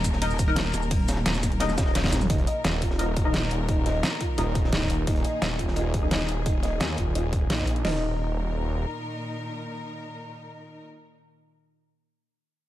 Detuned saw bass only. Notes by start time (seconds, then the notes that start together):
1.78 D#1
2.30 D#1
2.64 D#1
3.51 D#1
4.38 D#1
4.90 D#1
5.07 D#1
5.42 D#1
6.29 D#1
6.81 D#2
6.98 D#1
7.50 A#1
7.85 D#1